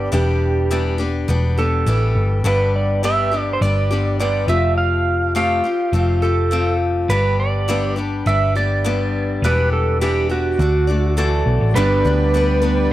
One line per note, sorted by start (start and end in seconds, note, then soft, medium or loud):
0.00 0.12 G2 medium
0.00 0.11 D3 medium
0.00 0.12 G3 medium
0.00 0.12 B3 medium
0.00 0.13 D4 medium
0.00 0.13 G4 medium
0.12 1.25 E1 medium
0.12 0.69 E3 medium
0.12 0.71 G3 medium
0.12 0.71 B3 medium
0.12 0.71 D4 medium
0.12 0.72 G4 medium
0.12 0.97 G4 medium
0.71 1.00 E3 medium
0.71 1.00 G3 medium
0.71 0.99 B3 medium
0.71 0.98 D4 medium
0.71 0.97 G4 medium
0.98 1.28 B3 soft
0.98 1.29 D4 medium
0.98 1.28 G4 medium
1.28 1.83 E1 medium
1.28 1.57 G3 medium
1.28 1.58 B3 medium
1.28 1.57 D4 medium
1.28 1.56 G4 medium
1.57 1.86 B3 soft
1.57 1.86 D4 soft
1.57 1.87 G4 medium
1.57 2.41 A4 medium
1.86 2.13 A1 medium
1.86 2.45 E3 medium
1.86 2.45 G3 medium
1.86 2.45 B3 medium
1.86 2.44 D4 medium
1.86 2.46 G4 medium
2.15 2.42 G1 medium
2.44 3.57 G1 medium
2.44 3.02 G2 medium
2.44 3.02 D3 medium
2.44 3.03 G3 medium
2.44 3.03 B3 medium
2.44 3.03 D4 medium
2.44 3.04 G4 medium
2.44 2.76 B4 medium
2.76 3.02 D5 medium
3.03 3.32 G2 medium
3.03 3.32 D3 medium
3.03 3.33 G3 medium
3.03 3.32 B3 medium
3.03 3.32 D4 medium
3.03 3.30 G4 medium
3.03 3.41 E5 medium
3.31 3.61 G3 soft
3.31 3.62 B3 soft
3.31 3.62 D4 soft
3.31 3.61 G4 soft
3.41 3.52 D5 medium
3.53 3.61 C5 medium
3.61 4.44 G1 medium
3.61 3.91 G3 medium
3.61 3.91 B3 medium
3.61 3.91 D4 medium
3.61 3.89 G4 medium
3.61 4.19 D5 medium
3.91 4.19 G3 soft
3.91 4.20 B3 soft
3.91 4.20 D4 medium
3.91 4.20 G4 medium
4.20 4.49 G2 medium
4.20 4.49 D3 medium
4.20 4.49 G3 medium
4.20 4.49 B3 medium
4.20 4.48 D4 medium
4.20 4.47 G4 medium
4.20 4.49 D5 medium
4.48 5.60 F1 medium
4.48 5.34 F3 medium
4.48 5.34 A3 medium
4.48 5.34 C4 medium
4.48 5.35 F4 medium
4.48 5.36 G4 medium
4.48 4.77 E5 medium
4.78 5.35 F5 loud
5.35 5.64 F3 medium
5.35 5.65 A3 medium
5.35 5.65 C4 medium
5.35 5.64 F4 medium
5.35 5.63 G4 medium
5.35 6.26 F5 medium
5.64 5.93 C4 soft
5.64 5.94 F4 soft
5.64 5.93 G4 soft
5.93 7.05 F1 medium
5.93 6.22 A3 medium
5.93 6.23 C4 medium
5.93 6.22 F4 medium
5.93 6.21 G4 medium
6.22 6.51 C4 soft
6.22 6.52 F4 soft
6.22 6.52 G4 medium
6.22 6.77 A4 medium
6.51 7.09 F3 medium
6.51 7.10 A3 medium
6.51 7.10 C4 medium
6.51 7.11 F4 medium
6.51 7.11 G4 medium
7.09 8.22 G1 medium
7.09 7.67 G2 medium
7.09 7.67 D3 medium
7.09 7.68 G3 medium
7.09 7.68 B3 medium
7.09 7.69 D4 medium
7.09 7.68 G4 medium
7.09 7.40 B4 medium
7.40 7.94 D5 medium
7.68 7.97 G2 medium
7.68 7.97 D3 medium
7.68 7.98 G3 medium
7.68 7.97 B3 medium
7.68 7.96 D4 medium
7.68 7.95 G4 medium
7.96 8.25 G3 soft
7.96 8.26 B3 soft
7.96 8.26 D4 soft
7.96 8.26 G4 medium
8.26 9.39 G1 medium
8.26 8.55 G3 medium
8.26 8.56 B3 medium
8.26 8.55 D4 medium
8.26 8.54 G4 medium
8.26 8.54 E5 loud
8.55 8.85 G3 soft
8.55 8.84 B3 soft
8.55 8.85 D4 soft
8.55 8.85 G4 medium
8.55 9.46 D5 medium
8.84 9.43 G2 medium
8.84 9.43 D3 medium
8.84 9.43 G3 medium
8.84 9.43 B3 medium
8.84 9.45 D4 medium
8.84 9.44 G4 medium
9.42 10.55 E1 medium
9.42 10.00 E3 medium
9.42 10.00 G3 medium
9.42 10.01 B3 medium
9.42 10.01 D4 medium
9.42 10.01 G4 medium
9.42 9.72 B4 medium
9.73 10.01 A4 medium
10.01 10.30 E3 medium
10.01 10.30 G3 medium
10.01 10.30 B3 medium
10.01 10.29 D4 medium
10.01 10.28 G4 medium
10.29 10.60 B3 soft
10.29 10.59 D4 soft
10.29 11.43 F#4 medium
10.29 10.59 G4 soft
10.59 11.42 D2 medium
10.59 10.88 A3 medium
10.59 10.88 D4 medium
10.59 10.87 F#4 medium
10.59 10.86 D5 medium
10.87 11.17 A3 soft
10.87 11.17 D4 soft
10.87 11.17 F#4 soft
10.87 11.17 D5 soft
11.17 11.75 D3 medium
11.17 11.75 E3 medium
11.17 11.76 A3 medium
11.17 11.76 D4 medium
11.17 11.76 F#4 medium
11.17 11.72 A4 medium
11.17 11.76 D5 medium
11.46 11.59 B1 medium
11.61 11.74 A1 medium
11.75 12.03 G1 loud
11.75 12.04 G2 medium
11.75 12.05 D3 medium
11.75 12.93 G3 medium
11.75 12.05 G3 medium
11.75 12.93 B3 medium
11.75 12.05 B3 medium
11.75 12.93 D4 medium
11.75 12.73 D4 medium
11.75 12.04 D4 medium
11.75 12.93 G4 medium
11.75 12.74 G4 medium
11.75 12.93 G4 medium
11.75 12.93 B4 loud
11.75 12.74 B4 medium
11.75 12.03 B4 medium
12.05 12.87 D2 medium
12.05 12.33 G3 soft
12.05 12.33 B3 medium
12.05 12.34 D4 soft
12.05 12.33 B4 medium
12.34 12.62 G3 medium
12.34 12.62 B3 medium
12.34 12.61 D4 medium
12.34 12.60 B4 medium
12.62 12.93 G3 medium
12.62 12.93 B3 medium
12.62 12.93 D4 medium
12.62 12.93 B4 medium